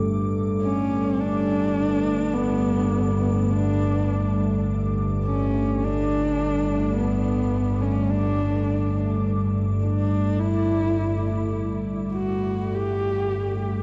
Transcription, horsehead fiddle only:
X:1
M:4/4
L:1/16
Q:1/4=52
K:none
V:1 name="Horsehead fiddle"
z2 ^C2 D4 B,3 B, D3 z | z2 ^C2 D4 B,3 C D3 z | z2 D2 E4 z2 ^F2 G4 |]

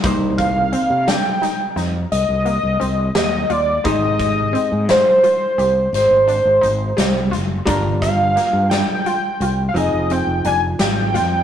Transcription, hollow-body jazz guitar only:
X:1
M:11/8
L:1/8
Q:1/4=86
K:Cm
V:1 name="Hollow-body jazz guitar"
[C,B,Ec]8- [C,B,Ec]3 | [A,EGc]8- [A,EGc]3 | [G,DFB]6 [F,CEA]4- [F,CEA] |]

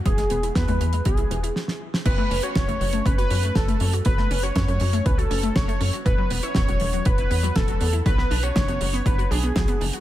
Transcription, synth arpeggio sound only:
X:1
M:4/4
L:1/16
Q:1/4=120
K:F#m
V:1 name="Synth arpeggio sound"
E, G, B, E B, G, E, G, B, E E, E z4 | F, A, C F C A, F, A, C F C A, F, A, C F | F, A, C F C A, F, A, C F C A, F, A, C F | E, F, B, E B, F, E, F, B, E B, F, E, F, B, E |
F, B, D F D B, F, B, D F D B, F, B, D F |]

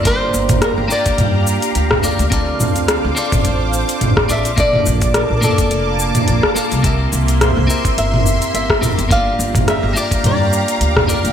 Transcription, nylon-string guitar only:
X:1
M:4/4
L:1/16
Q:"Swing 16ths" 1/4=106
K:Gdor
V:1 name="Nylon-string guitar"
c4 B2 d8 z2 | z12 z2 e2 | d4 B3/2 B/2 A8 z2 | z4 c4 e4 e4 |
f4 e2 d2 d6 z2 |]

